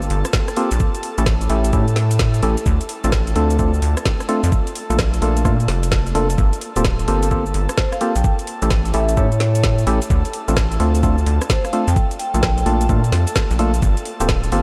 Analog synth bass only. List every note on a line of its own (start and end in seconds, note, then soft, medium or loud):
0.10 0.23 G1 loud
0.72 0.79 A#1 medium
1.18 1.48 A1 medium
1.50 1.75 A1 medium
1.73 2.41 A2 medium
2.43 2.56 A1 loud
2.66 2.79 D2 loud
3.04 3.34 A1 medium
3.36 3.81 D2 medium
3.82 3.95 D2 loud
4.43 4.51 F2 medium
4.90 5.20 A#1 medium
5.22 5.47 A#1 medium
5.45 5.68 A#2 medium
5.68 6.13 F1 medium
6.15 6.36 F1 medium
6.38 6.51 G1 loud
6.76 7.06 D1 medium
7.08 7.53 G1 medium
7.54 7.67 G1 loud
8.16 8.23 A#1 medium
8.62 8.92 A1 medium
8.94 9.19 A1 medium
9.17 9.85 A2 medium
9.87 10.00 A1 loud
10.10 10.23 D2 loud
10.48 10.78 A1 medium
10.80 11.25 D2 medium
11.26 11.39 D2 loud
11.88 11.95 F2 loud
12.34 12.64 A#1 medium
12.66 12.91 A#1 medium
12.89 13.12 A#2 medium
13.12 13.26 F2 medium
13.51 13.81 A#1 medium
13.82 13.95 G1 loud
14.20 14.50 D1 medium
14.52 14.62 G1 medium